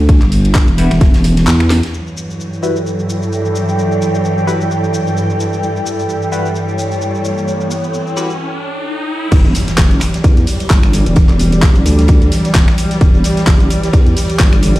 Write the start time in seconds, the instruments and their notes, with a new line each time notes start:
Already playing: wobble bass D2
0.09 kick, closed hi-hat, ride
0.22 wobble bass G1, clap, closed hi-hat
0.32 open hi-hat, ride
0.45 closed hi-hat, ride
0.55 kick, snare, clap, closed hi-hat, ride
0.68 wobble bass E1, closed hi-hat
0.78 synth stab G3 E4 F#4 B4, open hi-hat, ride
0.91 wobble bass E1, finger snap, snare, closed hi-hat
1.01 wobble bass E1, kick, snare, closed hi-hat, ride
1.14 snare, closed hi-hat, ride
1.23 snare, open hi-hat, ride
1.37 snare, closed hi-hat, ride
1.47 wobble bass E2, snare, clap, closed hi-hat, ride
1.60 finger snap, snare, closed hi-hat
1.70 snare, open hi-hat, ride
1.83 snare, closed hi-hat
1.93 string section G2 E3 F#3, ambient pad E4, shaker
2.07 ambient pad A4, shaker
2.17 shaker
2.30 shaker
2.38 ambient pad D5, shaker
2.44 ambient pad G5
2.53 shaker
2.63 synth stab G3 E4 F#4 B4, shaker
2.76 shaker
2.86 shaker
2.99 shaker
3.10 shaker
3.22 shaker
3.33 shaker
3.45 shaker
3.56 shaker
3.69 shaker
3.79 shaker
3.92 shaker
4.02 shaker
4.15 shaker
4.25 shaker
4.38 shaker
4.47 synth stab G3 E4 F#4 B4, shaker
4.61 shaker
4.71 shaker
4.84 shaker
4.94 shaker
5.07 shaker
5.17 shaker
5.30 shaker
5.40 shaker
5.53 shaker
5.63 string section G3, riser, shaker
5.76 shaker
5.86 shaker
5.99 shaker
6.09 shaker
6.22 shaker
6.32 synth stab G3 E4 F#4 B4, shaker
6.38 ambient pad C#5
6.45 shaker
6.55 shaker
6.68 shaker
6.79 shaker
6.92 shaker
7.02 shaker
7.15 shaker
7.25 shaker
7.38 shaker
7.48 shaker
7.61 shaker
7.71 shaker
7.84 shaker
7.94 shaker
8.07 shaker
8.17 synth stab G3 E4 F#4 B4, shaker
8.30 shaker
9.32 wobble bass E1, string section E3 F#3 G3, kick, closed hi-hat, crash, ride, impact, shaker
9.46 shaker
9.55 snare, open hi-hat, ride, shaker
9.68 snare, closed hi-hat, shaker
9.78 wobble bass F#1, kick, snare, clap, closed hi-hat, ride, shaker
9.91 ambient pad D5, closed hi-hat, ride, shaker
10.01 finger snap, clap, open hi-hat, ride, shaker
10.14 snare, closed hi-hat, shaker
10.24 wobble bass E2, kick, closed hi-hat, ride, shaker
10.37 closed hi-hat, shaker
10.47 open hi-hat, shaker
10.60 closed hi-hat, shaker
10.70 wobble bass G1, kick, snare, clap, closed hi-hat, ride, shaker
10.83 finger snap, closed hi-hat, ride, shaker
10.93 snare, open hi-hat, ride, shaker
11.06 wobble bass E1, closed hi-hat, ride, shaker
11.16 kick, closed hi-hat, ride, shaker
11.29 wobble bass E1, clap, closed hi-hat, shaker
11.39 open hi-hat, ride, shaker
11.52 closed hi-hat, ride, shaker
11.62 wobble bass F#1, kick, snare, clap, closed hi-hat, ride, shaker
11.76 closed hi-hat, shaker
11.86 wobble bass D2, open hi-hat, ride, shaker
11.99 snare, closed hi-hat, shaker
12.08 kick, closed hi-hat, ride, shaker
12.22 closed hi-hat, shaker
12.32 snare, open hi-hat, ride, shaker
12.45 snare, closed hi-hat, shaker
12.54 wobble bass E1, kick, snare, clap, closed hi-hat, ride, shaker
12.68 finger snap, snare, closed hi-hat, shaker
12.78 open hi-hat, ride, shaker
12.91 snare, closed hi-hat, shaker
13.01 wobble bass E1, kick, closed hi-hat, ride, shaker
13.15 shaker
13.24 snare, open hi-hat, ride, shaker
13.37 snare, closed hi-hat, shaker
13.47 wobble bass F#1, kick, snare, clap, closed hi-hat, ride, shaker
13.60 closed hi-hat, ride, shaker
13.70 open hi-hat, ride, shaker
13.83 snare, closed hi-hat, shaker
13.93 wobble bass E2, kick, closed hi-hat, ride, shaker
14.07 closed hi-hat, shaker
14.16 open hi-hat, shaker
14.30 closed hi-hat, shaker
14.39 wobble bass G1, kick, snare, clap, closed hi-hat, ride, shaker
14.53 finger snap, closed hi-hat, ride, shaker
14.62 snare, open hi-hat, ride, shaker
14.76 wobble bass E1, closed hi-hat, shaker